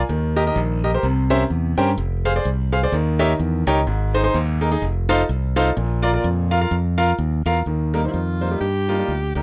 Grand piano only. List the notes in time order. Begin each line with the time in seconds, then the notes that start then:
0.09 D#3
0.36 G4 A#4 D#5
0.47 G4 A#4 D#5
0.84 G4 A#4 D#5
0.94 G4 A#4 C5
1.04 C3
1.30 C#4 G4 A#4 C5 E5
1.78 C#4 G4 A#4 C5 G5
2.25 G#4 C5 F5
2.36 G#4 C5 D5
2.72 G#4 C5 F5
2.83 G#4 C5 D5
2.93 D#3
3.19 D#4 G4 A#4 C#5 E5
3.67 D#4 G4 A#4 C#5 G5
3.87 G#2
4.14 D#4 G#4 C5
4.24 D#4 G#4 C5
4.61 D#4 G#4 A#4
4.71 D#4 G#4 D#5
5.09 D#4 F4 A4 C5 F5
5.56 D#4 F4 A4 C5 F5
5.76 A#2
6.03 F4 A#4 D5
6.13 F4 A#4 D5
6.51 F4 A#4 F5
6.61 F4 A#4 F5
6.98 F4 A#4 F5
7.46 F4 A#4 F5
7.67 D#3
7.94 G3 A#3 D#4 A#4
8.05 G3 D#4
8.41 G3 A#3 D#4 C5
8.51 G3 A#3 D#4 G4
8.88 G3 A#3 D#4 F4
8.99 G3 A#3 D#4 F4
9.36 G3 A#3 D#4 A#4